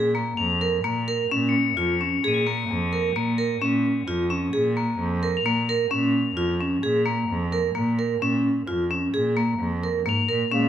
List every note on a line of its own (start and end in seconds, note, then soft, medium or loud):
0.00 0.31 A#2 medium
0.15 0.42 A#3 medium
0.37 0.78 F2 medium
0.37 1.31 F7 medium
0.61 0.75 A#4 medium
0.84 1.24 A#2 medium
0.84 0.98 A#3 medium
1.08 1.21 A#4 medium
1.30 1.70 A#2 medium
1.30 1.58 C#4 medium
1.49 2.43 C#7 medium
1.77 2.16 F2 medium
1.77 1.90 F4 medium
2.01 2.14 C#4 medium
2.23 2.63 A#2 medium
2.23 2.37 G#4 medium
2.28 3.22 D#7 soft
2.34 3.25 G#7 soft
2.34 3.27 A#7 soft
2.47 2.73 A#3 medium
2.69 3.08 F2 medium
2.93 3.06 A#4 medium
3.15 3.55 A#2 medium
3.15 3.29 A#3 medium
3.38 3.51 A#4 medium
3.61 4.01 A#2 medium
3.61 3.88 C#4 medium
4.07 4.47 F2 medium
4.07 4.21 F4 medium
4.30 4.44 C#4 medium
4.53 4.93 A#2 medium
4.53 4.66 G#4 medium
4.77 5.03 A#3 medium
4.99 5.39 F2 loud
5.23 5.36 A#4 medium
5.37 6.30 F7 medium
5.44 5.84 A#2 medium
5.44 5.59 A#3 medium
5.69 5.82 A#4 medium
5.90 6.30 A#2 medium
5.90 6.17 C#4 medium
6.36 6.76 F2 medium
6.36 6.50 F4 medium
6.61 6.74 C#4 medium
6.82 7.22 A#2 medium
6.82 6.96 G#4 medium
7.06 7.32 A#3 medium
7.29 7.69 F2 loud
7.52 7.66 A#4 medium
7.75 8.15 A#2 medium
7.75 7.88 A#3 medium
7.99 8.12 A#4 medium
8.21 8.61 A#2 medium
8.21 8.48 C#4 medium
8.67 9.06 F2 medium
8.67 8.81 F4 medium
8.91 9.04 C#4 medium
9.13 9.53 A#2 medium
9.13 9.27 G#4 medium
9.37 9.63 A#3 medium
9.59 9.99 F2 medium
9.84 9.96 A#4 medium
10.06 10.26 G#2 medium
10.06 10.19 A#3 medium
10.06 10.69 F7 medium
10.29 10.49 A#2 medium
10.29 10.42 A#4 medium
10.51 10.69 A#2 medium
10.51 10.69 C#3 medium
10.51 10.69 G#3 medium
10.51 10.69 A#3 medium
10.51 10.69 C#4 medium